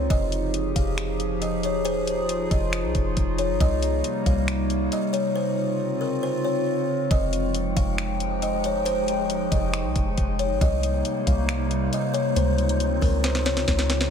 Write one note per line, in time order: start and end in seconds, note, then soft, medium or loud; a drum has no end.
0.00 10.57 D#4 medium
0.10 0.73 F1 loud
0.10 3.57 F3 medium
0.10 1.84 G4 medium
0.10 3.57 G#4 medium
0.10 0.72 D#5 loud
0.10 kick loud
0.10 closed hi-hat medium
0.32 closed hi-hat medium
0.54 closed hi-hat medium
0.76 2.47 F1 loud
0.76 1.38 F5 medium
0.76 kick medium
0.76 closed hi-hat medium
0.98 finger snap loud
0.98 closed hi-hat medium
1.20 closed hi-hat medium
1.42 1.63 D#5 medium
1.42 closed hi-hat medium
1.63 1.85 C#5 medium
1.63 closed hi-hat medium
1.85 3.59 F4 medium
1.85 2.47 C5 loud
1.85 closed hi-hat medium
2.07 closed hi-hat medium
2.29 closed hi-hat medium
2.51 2.85 F1 loud
2.51 3.35 D#5 medium
2.51 kick medium
2.51 closed hi-hat medium
2.73 finger snap loud
2.73 closed hi-hat medium
2.84 2.94 C2 medium
2.95 3.16 F1 loud
2.95 kick loud
2.95 closed hi-hat medium
3.17 3.51 F1 loud
3.17 kick medium
3.17 closed hi-hat medium
3.38 3.59 C#5 medium
3.38 closed hi-hat medium
3.50 3.60 G#1 medium
3.60 4.03 C2 loud
3.60 5.34 C3 medium
3.60 5.34 G3 medium
3.60 5.34 A#3 medium
3.60 4.23 D#5 loud
3.60 kick loud
3.60 closed hi-hat medium
3.82 closed hi-hat medium
4.04 closed hi-hat medium
4.26 4.89 C2 loud
4.26 4.88 F5 medium
4.26 kick medium
4.26 closed hi-hat medium
4.48 finger snap loud
4.48 closed hi-hat medium
4.70 closed hi-hat medium
4.92 5.13 D#5 medium
4.92 closed hi-hat medium
5.13 5.34 C#5 medium
5.13 closed hi-hat medium
5.36 7.09 C#3 medium
5.36 7.09 C4 medium
5.36 7.09 F4 medium
5.36 5.97 C5 medium
6.01 6.22 A#4 medium
6.23 6.44 C5 medium
6.45 6.66 C#5 medium
7.11 7.74 F1 loud
7.11 10.58 F3 medium
7.11 10.58 G#3 medium
7.11 10.58 D#4 medium
7.11 10.58 G4 medium
7.11 10.58 G#4 medium
7.11 7.73 D#5 loud
7.11 10.58 G5 medium
7.11 kick loud
7.11 closed hi-hat medium
7.33 closed hi-hat medium
7.54 closed hi-hat medium
7.77 9.48 F1 loud
7.77 8.38 F5 medium
7.77 kick medium
7.77 closed hi-hat medium
7.98 finger snap loud
7.98 closed hi-hat medium
8.20 closed hi-hat medium
8.42 8.63 D#5 medium
8.42 closed hi-hat medium
8.64 8.86 C#5 medium
8.64 closed hi-hat medium
8.85 9.48 C5 loud
8.85 closed hi-hat medium
9.08 closed hi-hat medium
9.30 closed hi-hat medium
9.52 9.86 F1 loud
9.52 10.35 D#5 medium
9.52 kick medium
9.52 closed hi-hat medium
9.74 finger snap loud
9.74 closed hi-hat medium
9.85 9.95 C2 loud
9.96 10.17 F1 loud
9.96 kick loud
9.96 closed hi-hat medium
10.18 10.52 F1 loud
10.18 kick medium
10.18 closed hi-hat medium
10.39 10.60 C#5 medium
10.39 closed hi-hat medium
10.50 10.61 G#1 loud
10.61 11.03 C2 loud
10.61 12.35 C3 medium
10.61 12.35 G3 medium
10.61 12.35 A#3 medium
10.61 14.08 D#4 medium
10.61 14.10 D#4 medium
10.61 14.08 C5 loud
10.61 11.23 D#5 loud
10.61 kick loud
10.61 closed hi-hat medium
10.83 closed hi-hat medium
11.05 closed hi-hat medium
11.27 11.90 C2 loud
11.27 11.89 F5 medium
11.27 kick medium
11.27 closed hi-hat medium
11.49 finger snap loud
11.49 closed hi-hat medium
11.71 closed hi-hat medium
11.93 12.14 D#5 medium
11.93 closed hi-hat medium
12.14 12.35 C#5 medium
12.14 closed hi-hat medium
12.36 12.99 C#2 loud
12.36 14.10 C#3 medium
12.36 14.10 F3 medium
12.36 14.10 C4 medium
12.36 14.10 F4 medium
12.36 12.98 C5 loud
12.36 closed hi-hat medium
12.58 closed hi-hat soft
12.69 closed hi-hat medium
12.80 closed hi-hat medium
13.02 13.65 C#2 loud
13.02 13.23 A#4 medium
13.02 kick medium
13.02 open hi-hat medium
13.24 13.45 C5 medium
13.24 snare medium
13.24 closed hi-hat medium
13.35 snare medium
13.45 13.66 C#5 medium
13.45 snare medium
13.45 closed hi-hat medium
13.57 snare medium
13.68 14.10 C#2 loud
13.68 kick medium
13.68 snare medium
13.68 closed hi-hat medium
13.79 snare medium
13.90 snare medium
13.90 closed hi-hat medium
14.01 snare medium